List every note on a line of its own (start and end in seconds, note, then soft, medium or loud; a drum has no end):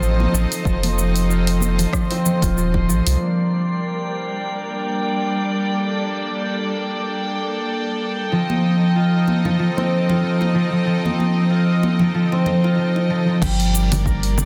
0.00 0.27 A1 medium
0.00 3.17 F3 medium
0.00 0.33 F3 medium
0.00 2.10 C4 loud
0.00 3.17 C4 medium
0.00 3.17 D#4 medium
0.00 1.29 F4 medium
0.00 3.17 A4 medium
0.00 3.22 C5 medium
0.00 3.17 D#5 medium
0.00 cabasa soft
0.20 high bongo medium
0.20 high conga medium
0.34 0.46 A1 medium
0.34 0.50 F3 loud
0.34 cabasa medium
0.51 0.64 F3 medium
0.51 open hi-hat medium
0.51 cabasa soft
0.65 1.86 F1 loud
0.65 1.77 F3 loud
0.65 kick loud
0.65 cabasa soft
0.83 open hi-hat soft
0.83 high conga medium
0.83 low conga medium
0.99 cabasa medium
1.16 open hi-hat medium
1.16 cabasa soft
1.29 2.42 F4 medium
1.29 cabasa soft
1.47 open hi-hat soft
1.60 high bongo medium
1.60 high conga medium
1.60 cabasa medium
1.78 1.91 F3 medium
1.78 open hi-hat medium
1.78 high bongo soft
1.78 low conga medium
1.78 cabasa soft
1.93 2.56 F3 loud
1.93 kick medium
1.93 cross-stick medium
1.93 cabasa soft
2.10 5.10 C4 loud
2.10 open hi-hat soft
2.10 high bongo medium
2.26 high conga soft
2.26 low conga medium
2.26 cabasa medium
2.42 2.90 D#1 loud
2.42 4.95 F4 medium
2.42 kick medium
2.42 open hi-hat medium
2.42 high bongo medium
2.42 cabasa soft
2.57 2.87 F3 medium
2.57 cabasa soft
2.74 kick medium
2.74 high bongo medium
2.89 3.02 A1 medium
2.89 3.05 F3 loud
2.89 cabasa medium
3.06 3.17 C2 loud
3.06 3.26 F3 medium
3.06 open hi-hat medium
3.06 cabasa soft
3.21 8.28 G3 medium
3.21 8.28 A#3 medium
3.21 8.27 D4 medium
3.21 5.74 A#4 medium
3.21 8.28 D5 medium
3.21 13.44 G5 medium
5.77 13.38 A4 medium
8.32 9.44 F3 medium
8.32 13.38 F3 medium
8.32 13.39 C4 medium
8.32 13.38 D#4 medium
8.32 13.38 D#5 medium
8.50 high conga medium
8.96 10.08 F4 medium
9.27 high bongo soft
9.27 high conga medium
9.45 9.58 F3 medium
9.45 high bongo soft
9.45 low conga medium
9.59 10.22 F3 medium
9.77 12.32 C4 medium
9.77 high bongo medium
9.77 high conga medium
10.09 11.50 F4 medium
10.09 high bongo medium
10.09 low conga medium
10.23 10.53 F3 medium
10.41 high bongo soft
10.41 high conga medium
10.55 10.71 F3 medium
10.72 10.85 F3 medium
10.86 11.99 F3 medium
11.05 high conga medium
11.05 low conga medium
11.20 high conga medium
11.50 12.64 F4 medium
11.83 high bongo soft
11.83 high conga medium
11.99 12.13 F3 medium
11.99 low conga medium
12.14 12.77 F3 medium
12.32 14.45 C4 medium
12.32 high bongo medium
12.46 high conga soft
12.46 low conga medium
12.64 14.45 F4 medium
12.64 high bongo medium
12.78 13.09 F3 medium
12.96 high bongo soft
13.10 13.27 F3 medium
13.28 13.47 F3 medium
13.42 14.45 G1 loud
13.42 14.45 G3 loud
13.42 14.45 G3 medium
13.42 14.45 A#3 medium
13.42 14.45 D4 medium
13.42 14.45 A#4 medium
13.42 14.45 D5 medium
13.42 kick loud
13.42 crash loud
13.42 low conga medium
13.42 cabasa soft
13.60 open hi-hat soft
13.75 cabasa medium
13.92 open hi-hat medium
13.92 low conga medium
13.92 cabasa soft
14.06 14.45 A#4 medium
14.06 kick loud
14.06 cabasa soft
14.23 open hi-hat soft
14.38 low conga medium
14.38 cabasa medium